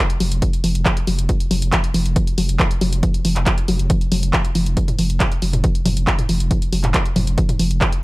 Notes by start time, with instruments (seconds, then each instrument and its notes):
0.10 closed hi-hat
0.20 sub bass F1, synth arpeggio sound F#3, open hi-hat
0.32 sub bass F1, closed hi-hat
0.42 synth arpeggio sound F3, kick, closed hi-hat
0.53 closed hi-hat
0.64 sub bass F1, synth arpeggio sound F3, open hi-hat
0.75 sub bass F1, closed hi-hat
0.86 synth arpeggio sound F3, kick, clap
0.97 closed hi-hat
1.07 sub bass F1, synth arpeggio sound F#3, open hi-hat
1.19 sub bass F1, closed hi-hat
1.29 synth arpeggio sound F3, kick, closed hi-hat
1.40 closed hi-hat
1.51 sub bass F1, synth arpeggio sound F#3, open hi-hat
1.62 sub bass F1, closed hi-hat
1.73 synth arpeggio sound F3, kick, clap, closed hi-hat
1.84 closed hi-hat
1.94 sub bass F1, synth arpeggio sound F3, open hi-hat
2.06 sub bass F1, closed hi-hat
2.16 synth arpeggio sound F3, kick, closed hi-hat
2.27 closed hi-hat
2.38 sub bass F1, synth arpeggio sound F#3, open hi-hat
2.49 sub bass F1, closed hi-hat
2.60 synth arpeggio sound F3, kick, clap
2.71 closed hi-hat
2.81 sub bass F1, synth arpeggio sound F#3, open hi-hat
2.93 sub bass F1, closed hi-hat
3.03 synth arpeggio sound F3, kick, closed hi-hat
3.14 closed hi-hat
3.25 sub bass F1, synth arpeggio sound F3, open hi-hat
3.36 sub bass F1, clap, closed hi-hat
3.46 synth arpeggio sound F3, kick, clap, closed hi-hat
3.58 closed hi-hat
3.68 sub bass F1, synth arpeggio sound F#3, open hi-hat
3.79 sub bass F1, closed hi-hat
3.90 synth arpeggio sound F3, kick, closed hi-hat
4.01 closed hi-hat
4.12 sub bass F1, synth arpeggio sound F#3, open hi-hat
4.23 sub bass F1, closed hi-hat
4.33 synth arpeggio sound F3, kick, clap
4.45 closed hi-hat
4.55 sub bass F1, synth arpeggio sound F3, open hi-hat
4.66 sub bass F1, closed hi-hat
4.77 synth arpeggio sound F3, kick, closed hi-hat
4.88 closed hi-hat, mid tom
4.99 sub bass F1, synth arpeggio sound F3, open hi-hat
5.10 sub bass F1, closed hi-hat
5.20 synth arpeggio sound F3, kick, clap, closed hi-hat, mid tom
5.32 closed hi-hat
5.42 sub bass F1, synth arpeggio sound F#3, open hi-hat
5.53 sub bass F1, closed hi-hat, mid tom
5.64 synth arpeggio sound F3, kick, closed hi-hat
5.75 closed hi-hat
5.86 sub bass F1, synth arpeggio sound F#3, mid tom, open hi-hat
5.97 sub bass F1, closed hi-hat
6.07 synth arpeggio sound F3, kick, clap
6.19 closed hi-hat, mid tom
6.29 sub bass F1, synth arpeggio sound F3, open hi-hat
6.40 sub bass F1, closed hi-hat
6.51 synth arpeggio sound F3, kick, closed hi-hat, mid tom
6.62 closed hi-hat
6.73 sub bass F1, synth arpeggio sound F#3, open hi-hat
6.84 sub bass F1, clap, closed hi-hat, mid tom
6.94 synth arpeggio sound F3, kick, clap, closed hi-hat
7.06 closed hi-hat
7.16 sub bass F1, synth arpeggio sound F#3, mid tom, open hi-hat
7.27 sub bass F1, closed hi-hat
7.38 synth arpeggio sound F3, kick, closed hi-hat
7.49 closed hi-hat, mid tom
7.59 sub bass F1, synth arpeggio sound F3, open hi-hat
7.71 sub bass F1, closed hi-hat
7.81 synth arpeggio sound F3, kick, clap, mid tom
7.92 closed hi-hat